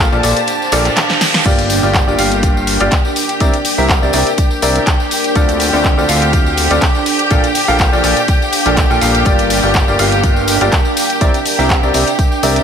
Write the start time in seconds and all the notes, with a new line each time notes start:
Already playing: D4 G4 C5 F5 A5
0.00 tambourine
0.12 A#1 A#2 A#3 F4 A4 D5, tambourine
0.23 A#1 A#2 A#3 F4 A4 D5, open hi-hat, tambourine
0.31 A#4
0.37 closed hi-hat, tambourine
0.47 closed hi-hat, tambourine, reverse cymbal
0.62 tambourine
0.72 A#1 A#2 A#3 F4 A4 D5, open hi-hat, tambourine
0.85 clap, closed hi-hat, tambourine
0.97 snare, clap, closed hi-hat, tambourine
1.10 snare, tambourine
1.21 snare, open hi-hat, tambourine
1.34 snare, closed hi-hat, tambourine
1.45 G1 G2 A#3 F4 G4 D5 G5, kick, closed hi-hat, crash, tambourine
1.59 closed hi-hat, tambourine
1.68 G4, open hi-hat, tambourine
1.83 G1 G2 A#3 F4 G4 D5, tambourine
1.94 kick, clap, tambourine
2.07 G1 G2 A#3 F4 G4 D5, tambourine
2.18 G1 G2 A#3 F4 G4 F5, open hi-hat, tambourine
2.32 closed hi-hat, tambourine
2.43 kick, closed hi-hat, tambourine
2.57 tambourine
2.67 open hi-hat, tambourine
2.80 G1 G2 A#3 F4 G4 D5, closed hi-hat, tambourine
2.92 kick, clap, closed hi-hat, tambourine
3.05 tambourine
3.16 open hi-hat, tambourine
3.29 closed hi-hat, tambourine
3.40 C2 C3 C4 E4 A#4 D5, kick, closed hi-hat, tambourine
3.53 closed hi-hat, tambourine
3.65 open hi-hat, tambourine
3.78 C2 C3 C4 E4 A#4 E5, tambourine
3.89 kick, clap, tambourine
4.02 C2 C3 C4 E4 A#4 D5, tambourine
4.13 C2 C3 C4 E4 A#4 D5, open hi-hat, tambourine
4.17 C5
4.27 closed hi-hat, tambourine
4.38 kick, closed hi-hat, tambourine
4.51 tambourine
4.62 C2 C3 C4 E4 A#4 D5, open hi-hat, tambourine
4.75 closed hi-hat, tambourine
4.87 kick, clap, closed hi-hat, tambourine
5.00 tambourine
5.11 open hi-hat, tambourine
5.22 A4, closed hi-hat, tambourine
5.36 D2 D3 C4 F4 A4 D5, kick, closed hi-hat, tambourine
5.49 closed hi-hat, tambourine
5.60 open hi-hat, tambourine
5.73 D2 D3 C4 F4 A4 D5, tambourine
5.84 kick, clap, tambourine
5.96 D2 D3 C4 F4 A4 D5 F5, tambourine
6.09 D2 D3 C4 F4 A4 F5, open hi-hat, tambourine
6.22 closed hi-hat, tambourine
6.33 kick, closed hi-hat, tambourine
6.46 tambourine
6.58 open hi-hat, tambourine
6.71 D2 D3 C4 F4 A4 D5, closed hi-hat, tambourine
6.81 kick, clap, closed hi-hat, tambourine
6.95 tambourine
7.06 open hi-hat, tambourine
7.19 closed hi-hat, tambourine
7.31 A#1 A#2 A#3 F4 A4 D5, kick, closed hi-hat, tambourine
7.44 closed hi-hat, tambourine
7.55 A#4, open hi-hat, tambourine
7.68 A#1 A#2 A#3 F4 A4 F5, tambourine
7.79 kick, clap, tambourine
7.93 A#1 A#2 A#3 F4 A4 D5, tambourine
8.04 A#1 A#2 A#3 F4 A4 D5, open hi-hat, tambourine
8.17 closed hi-hat, tambourine
8.28 kick, closed hi-hat, tambourine
8.42 tambourine
8.53 open hi-hat, tambourine
8.66 A#1 A#2 A#3 F4 A4 D5, clap, closed hi-hat, tambourine
8.77 kick, clap, closed hi-hat, tambourine
8.90 A#1 A#2 A#3 F4 A4 G5, tambourine
9.01 A#1 G2 A#3 F4 A4 F5, open hi-hat, tambourine
9.15 closed hi-hat, tambourine
9.25 G1 G2 A#3 F4 G4 D5, kick, closed hi-hat, tambourine
9.39 closed hi-hat, tambourine
9.49 G4, open hi-hat, tambourine
9.63 G1 G2 A#3 F4 G4 D5, tambourine
9.74 kick, clap, tambourine
9.88 G1 G2 A#3 F4 G4 D5, tambourine
9.99 G1 G2 A#3 F4 G4 F5, open hi-hat, tambourine
10.12 closed hi-hat, tambourine
10.24 kick, closed hi-hat, tambourine
10.36 tambourine
10.48 open hi-hat, tambourine
10.61 G1 G2 A#3 F4 G4 D5, closed hi-hat, tambourine
10.72 kick, clap, closed hi-hat, tambourine
10.85 tambourine
10.97 open hi-hat, tambourine
11.10 closed hi-hat, tambourine
11.21 C2 C3 C4 E4 A#4 D5, kick, closed hi-hat, tambourine
11.34 closed hi-hat, tambourine
11.46 open hi-hat, tambourine
11.59 C2 C3 C4 E4 A#4 E5, tambourine
11.70 kick, clap, tambourine
11.83 C2 C3 C4 E4 A#4 D5, tambourine
11.94 C2 C3 C4 E4 A#4 D5, open hi-hat, tambourine
11.98 C5
12.07 closed hi-hat, tambourine
12.19 kick, closed hi-hat, tambourine
12.32 tambourine
12.43 C2 C3 C4 E4 A#4 D5, open hi-hat, tambourine
12.56 closed hi-hat, tambourine